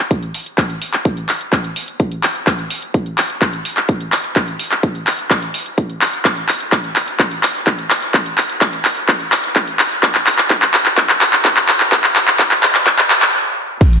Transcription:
0.11 kick, closed hi-hat
0.23 closed hi-hat
0.34 open hi-hat
0.46 closed hi-hat
0.58 kick, clap, closed hi-hat
0.70 closed hi-hat
0.82 open hi-hat
0.93 clap, closed hi-hat
1.05 kick, closed hi-hat
1.17 closed hi-hat
1.29 clap, open hi-hat
1.41 closed hi-hat
1.53 kick, clap, closed hi-hat
1.64 closed hi-hat
1.76 open hi-hat
1.88 closed hi-hat
2.00 kick, closed hi-hat
2.12 closed hi-hat
2.23 clap, open hi-hat
2.35 closed hi-hat
2.47 kick, clap, closed hi-hat
2.59 closed hi-hat
2.71 open hi-hat
2.82 closed hi-hat
2.94 kick, closed hi-hat
3.06 closed hi-hat
3.18 clap, open hi-hat
3.30 closed hi-hat
3.42 kick, clap, closed hi-hat
3.53 closed hi-hat
3.65 open hi-hat
3.77 clap, closed hi-hat
3.89 kick, closed hi-hat
4.00 closed hi-hat
4.12 clap, open hi-hat
4.24 closed hi-hat
4.36 kick, clap, closed hi-hat
4.48 closed hi-hat
4.60 open hi-hat
4.71 clap, closed hi-hat
4.83 kick, closed hi-hat
4.95 closed hi-hat
5.07 clap, open hi-hat
5.19 closed hi-hat
5.31 kick, clap, closed hi-hat
5.42 closed hi-hat
5.54 open hi-hat
5.66 closed hi-hat
5.78 kick, closed hi-hat
5.90 closed hi-hat
6.01 clap, open hi-hat
6.13 closed hi-hat
6.25 kick, clap, closed hi-hat, shaker
6.37 closed hi-hat
6.49 clap, open hi-hat, shaker
6.60 closed hi-hat, shaker
6.72 kick, clap, closed hi-hat, shaker
6.84 closed hi-hat
6.96 clap, open hi-hat, shaker
7.08 closed hi-hat, shaker
7.20 kick, clap, closed hi-hat, shaker
7.31 closed hi-hat
7.43 clap, open hi-hat, shaker
7.55 closed hi-hat, shaker
7.67 kick, clap, closed hi-hat, shaker
7.79 closed hi-hat
7.90 clap, open hi-hat, shaker
8.02 closed hi-hat, shaker
8.14 kick, clap, closed hi-hat, shaker
8.26 closed hi-hat
8.38 clap, open hi-hat, shaker
8.49 closed hi-hat, shaker
8.61 kick, clap, closed hi-hat, shaker
8.73 closed hi-hat
8.85 clap, open hi-hat, shaker
8.97 closed hi-hat, shaker
9.09 kick, clap, closed hi-hat, shaker
9.20 closed hi-hat
9.32 clap, open hi-hat, shaker
9.44 closed hi-hat, shaker
9.56 kick, clap, closed hi-hat, shaker
9.67 closed hi-hat
9.79 clap, open hi-hat, shaker
9.91 closed hi-hat, shaker
10.03 kick, clap, closed hi-hat, shaker
10.15 clap, closed hi-hat
10.27 clap, open hi-hat, shaker
10.38 clap, closed hi-hat, shaker
10.50 kick, clap, closed hi-hat, shaker
10.62 clap, closed hi-hat
10.74 clap, open hi-hat, shaker
10.86 clap, closed hi-hat, shaker
10.97 kick, clap, closed hi-hat, shaker
11.09 clap, closed hi-hat
11.21 clap, open hi-hat, shaker
11.33 clap, shaker
11.45 kick, clap, closed hi-hat, shaker
11.57 clap, closed hi-hat
11.68 clap, open hi-hat, shaker
11.80 clap, closed hi-hat, shaker
11.92 kick, clap, closed hi-hat, shaker
12.04 clap, closed hi-hat, shaker
12.16 clap, open hi-hat, shaker
12.28 clap, closed hi-hat, shaker
12.39 kick, clap, closed hi-hat, shaker
12.51 clap, closed hi-hat, shaker
12.63 clap, open hi-hat, shaker
12.75 clap, shaker
12.86 kick, clap, closed hi-hat, shaker
12.98 clap, closed hi-hat, shaker
13.10 clap, open hi-hat, shaker
13.22 clap, closed hi-hat, shaker
13.81 kick, closed hi-hat, crash, shaker
13.93 closed hi-hat, shaker

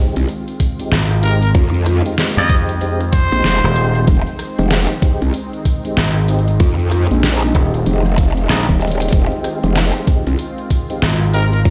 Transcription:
Already playing: D#3 G#3 C4 D#4 F4 G4
0.16 C2, open hi-hat
0.28 open hi-hat
0.48 open hi-hat
0.60 kick, open hi-hat
0.79 G#3 C4 D#4 G4, open hi-hat
0.92 G#1, cross-stick, snare, open hi-hat
1.11 cross-stick, open hi-hat
1.23 G#3 C4 D#4 G4 A#4, open hi-hat
1.42 A#4, open hi-hat
1.55 F2, kick, open hi-hat
1.74 open hi-hat
1.86 cross-stick, open hi-hat
2.06 G#3 C4 D#4 G4, open hi-hat
2.18 G#3 C4 D#4 G4, snare, open hi-hat
2.37 F2 D#5, open hi-hat
2.50 G#3 C4 D#4 G4, kick, open hi-hat
2.69 open hi-hat
2.81 G#3 C4 D#4 G4, open hi-hat
3.00 cross-stick, open hi-hat
3.13 C5, kick, open hi-hat
3.32 A#1 G#3 C4 D#4 G4, open hi-hat
3.44 F1, snare, open hi-hat
3.64 D#1
3.76 G#3 C4 D#4 G4, open hi-hat
3.95 open hi-hat
4.07 F1 D#4, kick, open hi-hat
4.27 open hi-hat
4.39 cross-stick, open hi-hat
4.59 F1 G#3 C4 D#4 G4, open hi-hat
4.71 G#3 C4 D#4 G4, snare, open hi-hat
4.90 open hi-hat
5.02 G#3 C4 D#4 G4, kick, open hi-hat
5.22 C2, open hi-hat
5.34 open hi-hat
5.53 open hi-hat
5.65 kick, open hi-hat
5.85 G#3 C4 D#4 G4, open hi-hat
5.97 G#1, cross-stick, snare, open hi-hat
6.16 cross-stick, open hi-hat
6.24 open hi-hat
6.28 G#3 C4 D#4 G4, open hi-hat
6.35 open hi-hat
6.39 open hi-hat
6.48 open hi-hat
6.60 F2, kick, open hi-hat
6.79 open hi-hat
6.91 cross-stick, open hi-hat
7.11 A#1 G#3 C4 D#4 G4, open hi-hat
7.23 G#3 C4 D#4 G4, snare, open hi-hat
7.43 open hi-hat
7.55 D#1 G#3 C4 D#4 G4, kick, open hi-hat
7.74 open hi-hat
7.86 F1 G#3 C4 D#4 G4, open hi-hat
8.06 cross-stick, open hi-hat
8.18 kick, open hi-hat
8.37 open hi-hat
8.49 A#1 G#3 C4 D#4 G4, snare, open hi-hat
8.69 D#1, kick, open hi-hat
8.81 G#3 C4 D#4 G4, open hi-hat
8.87 open hi-hat
8.91 open hi-hat
9.00 open hi-hat
9.02 open hi-hat
9.08 open hi-hat
9.12 F1 F4, kick, open hi-hat
9.32 open hi-hat
9.44 cross-stick, open hi-hat
9.63 F1 G#3 C4 D#4 G4, open hi-hat
9.76 G#3 C4 D#4 G4, snare, open hi-hat
9.95 open hi-hat
10.07 G#3 C4 D#4 G4, kick, open hi-hat
10.27 C2, open hi-hat
10.39 open hi-hat
10.58 open hi-hat
10.70 kick, open hi-hat
10.90 G#3 C4 D#4 G4, open hi-hat
11.02 G#1, cross-stick, snare, open hi-hat
11.22 cross-stick, open hi-hat
11.34 G#3 C4 D#4 G4 A#4, open hi-hat
11.53 A#4, open hi-hat
11.65 F2, kick, open hi-hat

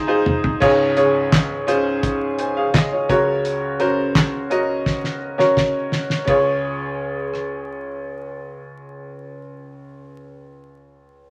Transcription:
Already playing: G#2 D#3 D#4 F4 G#4 C5 D#5
0.07 D#4 F4 G#4 C5
0.26 mid tom
0.44 floor tom
0.60 C#2 G#2 C#4 F4 G#4 C#5, kick, crash
0.96 C#4 F4 G#4 C#5, closed hi-hat
1.32 kick, snare, clap, closed hi-hat
1.67 C#4 F4 G#4 C5, closed hi-hat
2.03 kick, closed hi-hat
2.39 C5 G#5, closed hi-hat
2.57 G#4 F5
2.74 D#5, kick, snare, clap, closed hi-hat
2.92 F4 C#5
3.09 C#2 C#3 C#4 F#4 A#4 C#5, kick, closed hi-hat
3.45 closed hi-hat
3.79 C#4 F#4 A#4 C5, closed hi-hat
4.15 kick, snare, clap, closed hi-hat
4.50 C#4 F#4 A#4 D#5, closed hi-hat
4.86 kick, snare
5.04 snare
5.38 C#4 F#4 A#4 C#5, snare
5.57 kick, snare
5.92 snare
6.10 snare
6.25 C#2 C#4 F4 G#4, kick, ride
6.30 C#5
7.34 cross-stick

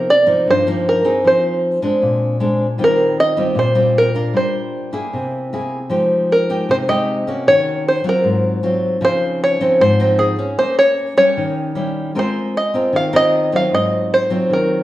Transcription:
Already playing: C3 A#4
0.10 D5
0.26 F3 A#3 D#4
0.47 G2 C5
0.67 F3 A#3 D#4
0.89 A#4
1.04 C4 D#4 G#4
1.24 F3 C5
1.82 G#3 C4 D4
2.02 A#2
2.40 G#3 C4 D4
2.78 D#3 G3 C4 F4
2.84 A#4
3.20 D#5
3.37 G3 C4 F4
3.55 A#2 C5
3.75 G3 C4 F4
3.98 A#4
4.15 D4 F4 A#4
4.33 G3 C5
4.93 A#3 E4 G#4
5.13 C3
5.53 A#3 E4 G#4
5.90 F3 G#3 D#4 G4
6.32 A#4
6.50 G#3 D#4 G4
6.69 C3 C5
6.88 G#3 D#4 G4 D#5
7.27 A#3 C#4 F#4
7.47 D#3 C#5
7.88 C5
8.04 F#3 C4 F4
8.09 A#4
8.24 G#2
8.63 F#3 C4 F4
9.01 C#3 F3 C4 D#4 C5
9.44 C#5
9.61 F3 C4 D#4
9.80 G#2 C5
10.00 F3 C4 D#4
10.19 G#4
10.39 C#4 G#4
10.58 A#3 C5
10.79 C#5
11.17 G3 C#4 C#5
11.37 D#3
11.75 G3 C#4 E4
12.15 G#3 C4 F4 A#4
12.19 C5
12.57 D#5
12.74 C4 F4 A#4
12.93 D#3 F5
13.13 C4 F4 A#4 D#5
13.52 F#3 C4 F4 F5
13.71 G#2 D#5
14.14 C5
14.30 F#3 C4 F4
14.50 D#3 A#4

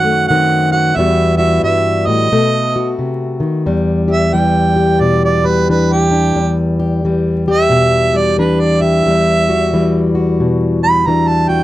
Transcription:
Already playing: F#2 D#3 C4 F#4 F#5
0.04 A3
0.28 D#3 C4 F#5
0.72 F#4 F#5
0.96 E2 E3 G3 B3 F#4 E5
1.37 F#4 E5
1.63 G2 E5
2.07 A2 D#5
2.32 B2 A3
2.76 F#4
2.99 C3
3.40 D#3
3.66 E2 G3
4.08 G4 E5
4.33 E3 G3 G5
4.76 G4
5.00 B2 D5
5.25 D5
5.44 G3 B4
5.69 E3 D4 B4
5.92 G4
6.11 D4
6.35 E2 G3
6.80 G4
7.05 E3 G3
7.48 G4 E5
7.70 B2
8.13 G3 D5
8.38 E3 D4 B4
8.60 D5
8.82 G4 E5
9.06 E2 G3
9.49 F#4
9.73 E3 G3
10.15 F#4
10.40 B2
10.83 G3 B5
11.07 E3 D4 A#5
11.28 A5
11.48 F#4 G5

